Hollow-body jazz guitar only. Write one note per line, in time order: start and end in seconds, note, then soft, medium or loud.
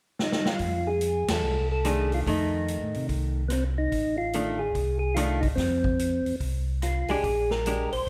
1.85 2.26 D#3 medium
1.85 2.26 A3 medium
1.85 2.48 D4 medium
2.27 3.42 D#3 medium
2.27 3.43 A3 medium
4.34 4.58 D#3 medium
4.34 4.58 A3 medium
4.34 4.59 D4 medium
5.16 5.40 D#3 medium
5.16 5.41 A3 medium
5.16 5.41 D4 medium
7.10 7.23 G#3 medium
7.10 7.23 D4 medium
7.10 7.23 G4 medium
7.67 7.90 G#3 medium
7.67 7.90 D4 medium
7.67 7.91 G4 medium